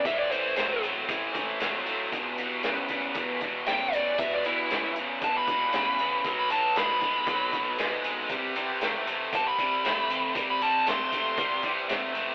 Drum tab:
HH |xxxxxxxx|xxxxxxxx|xxxxxxxx|xxxxxxxx|
SD |--o---o-|--o---o-|--o---o-|--o---o-|
BD |o---oo--|o--ooo--|o---oo--|o--ooo--|

HH |xxxxxxxx|xxxxxxxx|
SD |--o---o-|--o---o-|
BD |o---oo--|o--ooo--|